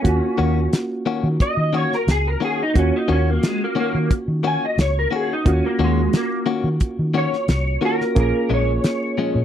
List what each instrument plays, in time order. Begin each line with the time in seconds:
Already playing: clean electric guitar C#4
0.02 fingered electric bass D#2, reed electric piano A#3 C#4 F4 F#4, kick, closed hi-hat
0.38 fingered electric bass D#2, clean electric guitar D#3 A#3 C#4 F#4
0.73 snare, closed hi-hat
1.06 clean electric guitar D#3 A#3 C#4 F#4
1.24 fingered electric bass D#3
1.40 clean electric guitar D#5, kick, closed hi-hat
1.57 fingered electric bass D#3
1.73 clean electric guitar D#3 A#3 C#4 F#4 C#5
1.92 clean electric guitar A#4, snare
2.07 fingered electric bass C#2, clean electric guitar G#4, snare, closed hi-hat
2.27 clean electric guitar A#4
2.40 clean electric guitar D#3 A#3 C#4 F#4
2.45 clean electric guitar G#4
2.63 clean electric guitar D#4
2.74 fingered electric bass D#2, reed electric piano A#3 C#4 F4 F#4, kick, closed hi-hat
2.78 clean electric guitar C#4
2.96 clean electric guitar D#4
3.08 fingered electric bass D#2, clean electric guitar D#3 A#3 C#4 F#4
3.30 clean electric guitar A#3
3.43 clean electric guitar G#3, snare, closed hi-hat
3.64 clean electric guitar A#3
3.75 clean electric guitar D#3 A#3 C#4 F#4
3.80 clean electric guitar A#3
3.95 fingered electric bass D#3
4.11 kick, closed hi-hat
4.28 fingered electric bass D#3
4.43 clean electric guitar D#3 A#3 C#4 F#4 G#5
4.65 clean electric guitar D#5
4.78 fingered electric bass C#2, clean electric guitar C#5, snare, closed hi-hat
4.99 clean electric guitar A#4
5.11 clean electric guitar D#3 A#3 C#4 F#4
5.16 clean electric guitar G#4
5.33 clean electric guitar D#4
5.45 fingered electric bass D#2, reed electric piano A#3 C#4 F4 F#4, clean electric guitar C#4, kick, closed hi-hat
5.66 clean electric guitar A#3
5.79 fingered electric bass D#2, clean electric guitar D#3 A#3 C#4 F#4
5.84 clean electric guitar G#3
6.13 clean electric guitar A#3, snare, closed hi-hat
6.46 clean electric guitar D#3 A#3 C#4 F#4
6.64 fingered electric bass D#3
6.80 kick, closed hi-hat
6.99 fingered electric bass D#3
7.14 clean electric guitar D#3 A#3 C#4 F#4 C#5
7.33 snare
7.48 fingered electric bass C2, snare, closed hi-hat
7.81 clean electric guitar D#3 A#3 C#4 F#4 A#4, reed electric piano A#3 C#4 F4 F#4
8.01 snare
8.15 fingered electric bass A#1, reed electric piano A#3 C#4 F4 G#4, kick, closed hi-hat
8.20 clean electric guitar A#4
8.50 fingered electric bass A#1, clean electric guitar A#2 F3 G#3 C#4
8.54 clean electric guitar C#5
8.84 snare, closed hi-hat
9.18 clean electric guitar A#2 F3 G#3 C#4
9.35 fingered electric bass A#2